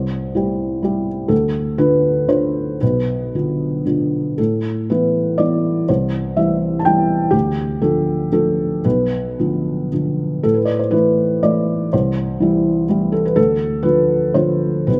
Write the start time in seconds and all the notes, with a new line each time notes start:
Already playing: C2 C5
0.35 G3 E4 G4
0.82 G3 E4 G4
1.28 D2 A4
1.78 D3 D4 F4 B4
2.28 D3 D4 F4 C5
2.81 B1 B4
3.35 D3 D4 F4
3.85 D3 D4 F4
4.38 A2 A4
4.90 E3 B3 E4 B4
5.38 E3 B3 E4 D5
5.89 C2 C5
6.37 E3 G3 E4 E5
6.79 A5
6.85 E3 G3 E4 G5
7.31 D2 G4
7.81 D3 F3 F4 A4
8.32 D3 F3 F4 A4
8.84 B1 B4
9.39 D3 F3 F4
9.92 D3 F3 F4
10.43 A2 A4
10.54 B4
10.65 D5
10.79 C5
10.91 E3 A3 E4 B4
11.43 E3 A3 E4 D5
11.93 C2 C5
12.40 E3 G3 E4
12.89 E3 G3 E4
13.12 A4
13.25 B4
13.36 D2 A4
13.83 D3 F3 F4 B4
14.34 D3 F3 F4 C5
14.87 B1 B4